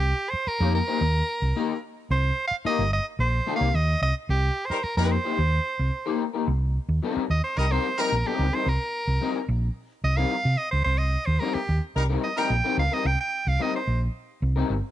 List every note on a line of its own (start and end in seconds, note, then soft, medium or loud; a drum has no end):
0.00 0.12 C2 loud
0.00 0.31 G4 loud
0.30 0.49 C5 loud
0.30 muted fingered electric bass stroke soft
0.47 0.74 A#4 loud
0.47 muted fingered electric bass stroke soft
0.60 0.80 F2 medium
0.60 0.77 A#3 medium
0.60 0.77 D#4 medium
0.60 0.76 G4 medium
0.60 0.76 A#4 medium
0.75 1.79 A#4 loud
0.88 1.01 A#3 medium
0.88 1.00 D#4 medium
0.88 1.00 G4 medium
0.88 1.00 C5 medium
1.01 1.21 D#2 loud
1.42 1.52 C2 medium
1.56 1.72 A#3 medium
1.56 1.72 D#4 loud
1.56 1.72 G4 medium
1.56 1.72 A#4 medium
2.10 2.30 C2 loud
2.10 2.45 C5 loud
2.47 2.55 F5 loud
2.47 muted fingered electric bass stroke medium
2.65 2.81 A#3 medium
2.65 2.81 D#4 medium
2.65 2.81 G4 loud
2.65 2.81 A#4 loud
2.65 2.91 D#5 loud
2.65 muted fingered electric bass stroke soft
2.79 2.98 G1 loud
2.93 3.05 D#5 loud
3.19 3.39 A#1 loud
3.19 3.54 C5 loud
3.46 3.67 A#3 medium
3.46 3.67 D#4 medium
3.46 3.67 G4 medium
3.46 3.68 A#4 medium
3.56 3.77 F5 loud
3.61 3.71 C2 medium
3.74 3.94 D#2 loud
3.74 4.02 D#5 loud
4.02 4.11 C2 medium
4.02 4.15 D#5 loud
4.29 4.49 C2 loud
4.29 4.67 G4 loud
4.66 4.85 C5 medium
4.70 4.79 G3 medium
4.70 4.79 D#4 medium
4.70 4.79 A#4 medium
4.70 muted fingered electric bass stroke medium
4.83 4.96 A#4 loud
4.83 muted fingered electric bass stroke soft
4.97 5.17 F2 loud
4.97 5.09 G3 medium
4.97 5.14 A#3 medium
4.97 5.09 D#4 medium
4.97 5.14 D#4 medium
4.97 5.13 G4 medium
4.97 5.13 A#4 medium
4.97 5.09 A#4 loud
5.11 6.21 C5 loud
5.24 5.38 A#3 medium
5.24 5.38 D#4 medium
5.24 5.37 G4 medium
5.24 5.37 C5 medium
5.39 5.58 D#2 loud
5.79 5.89 C2 medium
6.06 6.23 A#3 medium
6.06 6.23 D#4 medium
6.06 6.22 G4 medium
6.06 6.22 A#4 medium
6.33 6.47 A#3 soft
6.33 6.47 D#4 medium
6.33 6.47 G4 medium
6.33 6.46 A#4 medium
6.48 6.77 C2 loud
6.89 6.99 D#2 medium
7.03 7.23 G3 medium
7.03 7.23 C4 medium
7.03 7.23 D#4 medium
7.03 7.24 A#4 medium
7.17 muted fingered electric bass stroke soft
7.30 7.40 D#2 medium
7.30 7.43 D#5 medium
7.44 7.60 C5 medium
7.57 7.77 C2 loud
7.57 7.66 G3 medium
7.57 7.66 D#4 medium
7.57 7.66 A#4 medium
7.57 7.73 D#5 loud
7.70 7.88 G3 medium
7.70 7.87 C4 medium
7.70 7.87 D#4 medium
7.70 7.86 A#4 loud
7.70 8.02 C5 loud
7.98 8.16 G3 loud
7.98 8.11 G3 medium
7.98 8.11 C4 medium
7.98 8.11 D#4 medium
7.98 8.16 D#4 loud
7.98 8.10 A#4 medium
7.98 8.16 A#4 loud
7.98 8.28 A#4 medium
8.12 8.22 A#1 medium
8.25 8.47 G3 medium
8.25 8.46 C4 medium
8.25 8.46 D#4 medium
8.25 8.56 G4 medium
8.25 8.46 A#4 medium
8.39 8.49 C#2 medium
8.53 8.66 G3 medium
8.53 8.66 C4 medium
8.53 8.66 D#4 medium
8.53 8.65 A#4 medium
8.53 8.70 C5 loud
8.66 8.76 C2 loud
8.66 9.50 A#4 medium
9.07 9.17 C2 medium
9.21 9.37 G3 medium
9.21 9.38 C4 medium
9.21 9.38 D#4 medium
9.21 9.38 A#4 medium
9.48 9.68 A#1 loud
10.04 10.23 C2 medium
10.04 10.18 D#5 loud
10.17 10.34 G3 medium
10.17 10.34 C4 medium
10.17 10.33 D#4 medium
10.17 10.33 A#4 medium
10.17 10.59 F5 loud
10.45 10.55 C3 medium
10.58 10.71 D#5 loud
10.71 10.82 C#2 medium
10.71 10.84 C5 medium
10.84 11.15 C2 loud
10.84 11.00 C5 loud
10.98 11.27 D#5 medium
11.26 11.37 D#2 loud
11.26 11.41 C5 medium
11.39 11.57 G3 medium
11.39 11.57 C4 medium
11.39 11.57 D#4 medium
11.39 11.55 A#4 medium
11.39 11.58 A#4 medium
11.54 11.82 G4 medium
11.54 muted fingered electric bass stroke medium
11.69 11.78 D#2 medium
11.96 12.15 C2 loud
11.96 12.04 G3 medium
11.96 12.04 D#4 medium
11.96 12.04 A#4 loud
12.09 12.26 G3 medium
12.09 12.26 C4 medium
12.09 12.25 D#4 medium
12.09 12.25 A#4 medium
12.24 12.40 D#5 medium
12.37 12.54 G3 medium
12.37 12.50 G3 medium
12.37 12.50 C4 medium
12.37 12.54 D#4 loud
12.37 12.49 D#4 medium
12.37 12.49 A#4 medium
12.37 12.55 A#4 loud
12.37 12.79 G5 loud
12.50 12.60 A#1 medium
12.64 12.81 G3 medium
12.64 12.80 C4 medium
12.64 12.80 D#4 medium
12.64 12.80 A#4 medium
12.77 12.87 C#2 medium
12.77 12.95 F5 loud
12.92 13.05 G3 medium
12.92 13.04 C4 medium
12.92 13.04 D#4 medium
12.92 13.04 A#4 medium
12.92 13.08 D#5 loud
13.05 13.15 C2 loud
13.05 13.19 G5 loud
13.20 13.50 G5 medium
13.47 13.56 C2 loud
13.47 13.63 F5 medium
13.59 13.75 G3 medium
13.59 13.76 C4 medium
13.59 13.76 D#4 medium
13.59 13.76 A#4 medium
13.59 13.75 D#5 medium
13.76 14.00 C5 medium
13.87 14.07 A#1 medium
14.42 14.62 C2 loud
14.56 14.73 G3 medium
14.56 14.72 C4 medium
14.56 14.72 D#4 medium
14.56 14.72 A#4 medium
14.70 14.80 G1 medium